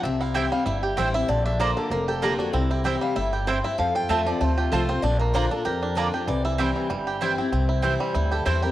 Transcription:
0.03 C2 C3 C4 E5
0.21 E4 F5
0.34 E3 G3 C4 E4 G4 C5 E5 G5
0.52 G3 C4 E4 F5
0.66 G1 G2 E4 E5
0.83 G4
0.97 A1 E3 G3 C4 E4 C5 G5
1.14 C4 E4 E5
1.28 A#1 A#2 D3 D5
1.45 D4 E5
1.59 D3 A#3 D4 F4 C5 D5 A#5
1.77 D3 A4
1.90 F1 F2 A#3 A#4
2.08 G4 A4
2.22 D3 A#3 D4 F4 G4 D5 A#5
2.39 D4 F#4
2.53 C2 C3 C4 E4
2.71 E4 G4
2.84 E3 G3 C4 E4 G4 C5 G5
3.01 G3 F5
3.16 G1 A2 E4 E5
3.33 G4
3.47 G2 C4 E4 C5 G5
3.64 E4 E5
3.78 F2 F3 F5
3.95 F4 G5
4.09 E2 F3 A3 C4 F4 C5 E5 A5
4.26 F3 C4 F4 D5
4.41 D2 C3 A3 C5
4.58 F4 G4
4.72 C2 F3 A3 C4 F4 A4 C5 A5
4.89 C4 F4 C5
5.02 A#1 A#2 D4 D5
5.19 A#3 A#4
5.34 D3 A#3 D4 F4 C5 D5 A#5
5.50 D4 F4 A4
5.65 F2 G4 A#4
5.83 D4
5.95 D3 A#3 D4 F4 D5 A#5
6.13 D4 F4 G4
6.28 C2 C3 E3 D5
6.45 E4 E5
6.58 E3 G3 C4 E4 C5 G5
6.76 E3
6.90 G1 G2 G3
7.07 G4
7.21 E3 G3 C4 E4 C5 G5
7.38 C4 E4
7.52 C2 C3 C4
7.69 E4
7.82 E3 G3 C4 E4 C5 G5
8.00 G3
8.14 D2 G2 E4
8.31 G4 A4
8.45 E2 E3 G3 C4 E4 C5 G5
8.62 C4 E4 G4 A#4

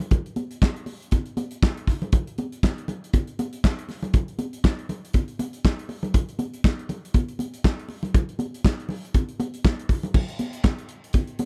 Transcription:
0.00 closed hi-hat, low conga
0.11 kick, closed hi-hat, muted conga, low conga
0.26 closed hi-hat
0.36 closed hi-hat, muted conga, high conga
0.51 closed hi-hat
0.62 kick, snare, clap, muted conga, high conga
0.76 closed hi-hat
0.86 open hi-hat, muted conga
1.02 closed hi-hat
1.11 kick, closed hi-hat, muted conga, high conga
1.26 closed hi-hat
1.37 closed hi-hat, muted conga, high conga
1.51 closed hi-hat
1.63 kick, snare, clap, muted conga, high conga
1.77 closed hi-hat
1.87 kick, snare, open hi-hat
2.02 closed hi-hat, low conga
2.12 kick, closed hi-hat, low conga
2.27 closed hi-hat
2.38 closed hi-hat, muted conga, high conga
2.52 closed hi-hat
2.63 kick, snare, clap, muted conga, high conga
2.78 closed hi-hat
2.88 closed hi-hat, muted conga, low conga
3.04 closed hi-hat
3.13 kick, closed hi-hat, muted conga, high conga
3.27 closed hi-hat
3.39 closed hi-hat, muted conga, high conga
3.53 closed hi-hat
3.64 kick, snare, clap, high conga
3.79 closed hi-hat
3.89 snare, open hi-hat, muted conga
4.03 closed hi-hat, low conga
4.14 kick, closed hi-hat, muted conga, low conga
4.28 closed hi-hat
4.39 closed hi-hat, muted conga, high conga
4.53 closed hi-hat
4.64 kick, snare, clap, muted conga, high conga
4.79 closed hi-hat
4.89 closed hi-hat, muted conga, low conga
5.05 closed hi-hat
5.13 kick, closed hi-hat, muted conga, high conga
5.28 closed hi-hat
5.39 closed hi-hat, muted conga, high conga
5.53 closed hi-hat
5.65 kick, snare, clap, high conga
5.79 closed hi-hat
5.89 open hi-hat, muted conga
6.03 closed hi-hat, low conga
6.14 kick, closed hi-hat, low conga
6.29 closed hi-hat
6.39 closed hi-hat, muted conga, high conga
6.54 closed hi-hat
6.64 kick, snare, clap, high conga
6.79 closed hi-hat
6.89 closed hi-hat, muted conga, low conga
7.05 closed hi-hat
7.14 kick, closed hi-hat, muted conga, high conga
7.29 closed hi-hat
7.39 closed hi-hat, muted conga, high conga
7.54 closed hi-hat
7.64 kick, snare, clap, muted conga, high conga
7.79 closed hi-hat
7.89 open hi-hat, muted conga
8.03 closed hi-hat, low conga
8.14 kick, closed hi-hat, muted conga, low conga
8.29 closed hi-hat
8.39 closed hi-hat, muted conga, high conga
8.54 closed hi-hat
8.65 kick, snare, clap, muted conga, high conga
8.80 closed hi-hat
8.89 open hi-hat, muted conga, low conga
9.05 closed hi-hat
9.14 kick, closed hi-hat, muted conga, high conga
9.29 closed hi-hat
9.40 closed hi-hat, muted conga, high conga
9.54 closed hi-hat
9.65 kick, snare, clap, high conga
9.79 closed hi-hat
9.89 kick, open hi-hat, muted conga
10.03 closed hi-hat, low conga
10.14 kick, crash, muted conga, low conga
10.29 closed hi-hat
10.39 closed hi-hat, high conga
10.53 closed hi-hat
10.64 kick, snare, clap, high conga
10.79 closed hi-hat
10.89 closed hi-hat
11.04 closed hi-hat
11.13 kick, closed hi-hat, muted conga, high conga
11.27 closed hi-hat
11.39 closed hi-hat, muted conga, high conga

